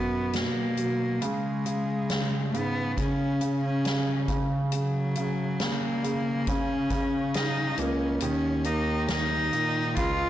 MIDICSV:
0, 0, Header, 1, 5, 480
1, 0, Start_track
1, 0, Key_signature, 6, "major"
1, 0, Tempo, 875912
1, 668, Time_signature, 4, 2, 24, 8
1, 5642, End_track
2, 0, Start_track
2, 0, Title_t, "Cello"
2, 0, Program_c, 0, 42
2, 0, Note_on_c, 0, 59, 78
2, 198, Note_on_c, 0, 58, 76
2, 206, Note_off_c, 0, 59, 0
2, 683, Note_on_c, 0, 56, 84
2, 691, Note_off_c, 0, 58, 0
2, 1408, Note_on_c, 0, 59, 86
2, 1417, Note_off_c, 0, 56, 0
2, 1638, Note_off_c, 0, 59, 0
2, 1647, Note_on_c, 0, 61, 90
2, 1975, Note_off_c, 0, 61, 0
2, 2000, Note_on_c, 0, 61, 86
2, 2331, Note_off_c, 0, 61, 0
2, 2600, Note_on_c, 0, 54, 78
2, 3079, Note_on_c, 0, 58, 86
2, 3087, Note_off_c, 0, 54, 0
2, 3552, Note_on_c, 0, 61, 95
2, 3560, Note_off_c, 0, 58, 0
2, 4029, Note_on_c, 0, 63, 86
2, 4038, Note_off_c, 0, 61, 0
2, 4266, Note_on_c, 0, 61, 84
2, 4274, Note_off_c, 0, 63, 0
2, 4502, Note_off_c, 0, 61, 0
2, 4505, Note_on_c, 0, 61, 94
2, 4743, Note_on_c, 0, 63, 83
2, 4752, Note_off_c, 0, 61, 0
2, 4981, Note_off_c, 0, 63, 0
2, 4989, Note_on_c, 0, 63, 97
2, 5447, Note_off_c, 0, 63, 0
2, 5475, Note_on_c, 0, 65, 90
2, 5642, Note_off_c, 0, 65, 0
2, 5642, End_track
3, 0, Start_track
3, 0, Title_t, "Grand piano"
3, 0, Program_c, 1, 0
3, 0, Control_c, 1, 64, 127
3, 0, Note_on_c, 1, 47, 45
3, 0, Note_on_c, 1, 54, 47
3, 178, Note_off_c, 1, 47, 0
3, 186, Note_on_c, 1, 47, 48
3, 420, Note_off_c, 1, 54, 0
3, 428, Note_on_c, 1, 54, 43
3, 654, Note_off_c, 1, 47, 0
3, 661, Note_off_c, 1, 54, 0
3, 666, Note_on_c, 1, 49, 59
3, 675, Control_c, 1, 64, 0
3, 765, Control_c, 1, 64, 127
3, 901, Note_off_c, 1, 49, 0
3, 909, Note_on_c, 1, 49, 46
3, 1146, Note_off_c, 1, 49, 0
3, 1154, Note_on_c, 1, 49, 48
3, 1384, Note_off_c, 1, 49, 0
3, 1392, Note_on_c, 1, 49, 50
3, 1622, Note_off_c, 1, 49, 0
3, 1630, Note_on_c, 1, 49, 49
3, 1861, Note_off_c, 1, 49, 0
3, 1869, Note_on_c, 1, 49, 52
3, 2099, Note_off_c, 1, 49, 0
3, 2107, Note_on_c, 1, 49, 52
3, 2339, Note_off_c, 1, 49, 0
3, 2348, Note_on_c, 1, 49, 59
3, 2353, Control_c, 1, 64, 0
3, 2463, Control_c, 1, 64, 127
3, 2580, Note_off_c, 1, 49, 0
3, 2588, Note_on_c, 1, 49, 51
3, 2823, Note_off_c, 1, 49, 0
3, 2832, Note_on_c, 1, 49, 52
3, 3060, Note_off_c, 1, 49, 0
3, 3068, Note_on_c, 1, 49, 54
3, 3299, Note_off_c, 1, 49, 0
3, 3307, Note_on_c, 1, 49, 51
3, 3546, Note_off_c, 1, 49, 0
3, 3554, Note_on_c, 1, 49, 56
3, 3778, Note_off_c, 1, 49, 0
3, 3786, Note_on_c, 1, 49, 60
3, 4021, Note_off_c, 1, 49, 0
3, 4029, Note_on_c, 1, 49, 50
3, 4268, Note_on_c, 1, 58, 60
3, 4488, Note_off_c, 1, 49, 0
3, 4495, Note_off_c, 1, 58, 0
3, 4506, Control_c, 1, 64, 0
3, 4506, Note_on_c, 1, 51, 61
3, 4599, Control_c, 1, 64, 127
3, 4742, Note_on_c, 1, 58, 52
3, 4968, Note_off_c, 1, 51, 0
3, 4976, Note_on_c, 1, 51, 52
3, 5211, Note_off_c, 1, 58, 0
3, 5219, Note_on_c, 1, 58, 53
3, 5448, Note_off_c, 1, 51, 0
3, 5456, Note_off_c, 1, 58, 0
3, 5464, Note_on_c, 1, 49, 71
3, 5471, Control_c, 1, 64, 0
3, 5572, Control_c, 1, 64, 127
3, 5642, Note_off_c, 1, 49, 0
3, 5642, End_track
4, 0, Start_track
4, 0, Title_t, "Bass clarinet"
4, 0, Program_c, 2, 71
4, 0, Note_on_c, 2, 42, 68
4, 255, Note_off_c, 2, 42, 0
4, 428, Note_on_c, 2, 47, 66
4, 652, Note_off_c, 2, 47, 0
4, 666, Note_on_c, 2, 49, 76
4, 1367, Note_off_c, 2, 49, 0
4, 1390, Note_on_c, 2, 44, 71
4, 1612, Note_off_c, 2, 44, 0
4, 1632, Note_on_c, 2, 49, 83
4, 2327, Note_off_c, 2, 49, 0
4, 2346, Note_on_c, 2, 49, 85
4, 3136, Note_off_c, 2, 49, 0
4, 3303, Note_on_c, 2, 49, 76
4, 3761, Note_off_c, 2, 49, 0
4, 3784, Note_on_c, 2, 49, 78
4, 4240, Note_off_c, 2, 49, 0
4, 4260, Note_on_c, 2, 37, 82
4, 4482, Note_off_c, 2, 37, 0
4, 4498, Note_on_c, 2, 39, 97
4, 5198, Note_off_c, 2, 39, 0
4, 5220, Note_on_c, 2, 46, 73
4, 5447, Note_off_c, 2, 46, 0
4, 5468, Note_on_c, 2, 37, 98
4, 5642, Note_off_c, 2, 37, 0
4, 5642, End_track
5, 0, Start_track
5, 0, Title_t, "Drums"
5, 183, Note_on_c, 9, 42, 79
5, 190, Note_on_c, 9, 38, 85
5, 238, Note_off_c, 9, 42, 0
5, 244, Note_off_c, 9, 38, 0
5, 423, Note_on_c, 9, 42, 67
5, 478, Note_off_c, 9, 42, 0
5, 667, Note_on_c, 9, 42, 81
5, 722, Note_off_c, 9, 42, 0
5, 908, Note_on_c, 9, 42, 62
5, 963, Note_off_c, 9, 42, 0
5, 1149, Note_on_c, 9, 42, 81
5, 1151, Note_on_c, 9, 38, 93
5, 1204, Note_off_c, 9, 42, 0
5, 1206, Note_off_c, 9, 38, 0
5, 1394, Note_on_c, 9, 42, 52
5, 1449, Note_off_c, 9, 42, 0
5, 1630, Note_on_c, 9, 42, 76
5, 1631, Note_on_c, 9, 36, 86
5, 1685, Note_off_c, 9, 36, 0
5, 1685, Note_off_c, 9, 42, 0
5, 1868, Note_on_c, 9, 42, 60
5, 1923, Note_off_c, 9, 42, 0
5, 2110, Note_on_c, 9, 42, 78
5, 2116, Note_on_c, 9, 38, 96
5, 2164, Note_off_c, 9, 42, 0
5, 2171, Note_off_c, 9, 38, 0
5, 2346, Note_on_c, 9, 42, 71
5, 2347, Note_on_c, 9, 36, 88
5, 2401, Note_off_c, 9, 36, 0
5, 2401, Note_off_c, 9, 42, 0
5, 2586, Note_on_c, 9, 42, 86
5, 2640, Note_off_c, 9, 42, 0
5, 2825, Note_on_c, 9, 42, 63
5, 2880, Note_off_c, 9, 42, 0
5, 3067, Note_on_c, 9, 42, 85
5, 3069, Note_on_c, 9, 38, 102
5, 3122, Note_off_c, 9, 42, 0
5, 3124, Note_off_c, 9, 38, 0
5, 3312, Note_on_c, 9, 42, 55
5, 3366, Note_off_c, 9, 42, 0
5, 3546, Note_on_c, 9, 42, 78
5, 3548, Note_on_c, 9, 36, 87
5, 3600, Note_off_c, 9, 42, 0
5, 3603, Note_off_c, 9, 36, 0
5, 3783, Note_on_c, 9, 42, 59
5, 3784, Note_on_c, 9, 36, 79
5, 3837, Note_off_c, 9, 42, 0
5, 3839, Note_off_c, 9, 36, 0
5, 4023, Note_on_c, 9, 42, 81
5, 4030, Note_on_c, 9, 38, 95
5, 4078, Note_off_c, 9, 42, 0
5, 4085, Note_off_c, 9, 38, 0
5, 4261, Note_on_c, 9, 42, 71
5, 4316, Note_off_c, 9, 42, 0
5, 4496, Note_on_c, 9, 42, 92
5, 4551, Note_off_c, 9, 42, 0
5, 4737, Note_on_c, 9, 42, 65
5, 4792, Note_off_c, 9, 42, 0
5, 4978, Note_on_c, 9, 42, 80
5, 4980, Note_on_c, 9, 38, 100
5, 5033, Note_off_c, 9, 42, 0
5, 5035, Note_off_c, 9, 38, 0
5, 5222, Note_on_c, 9, 42, 53
5, 5277, Note_off_c, 9, 42, 0
5, 5460, Note_on_c, 9, 42, 84
5, 5464, Note_on_c, 9, 36, 92
5, 5515, Note_off_c, 9, 42, 0
5, 5519, Note_off_c, 9, 36, 0
5, 5642, End_track
0, 0, End_of_file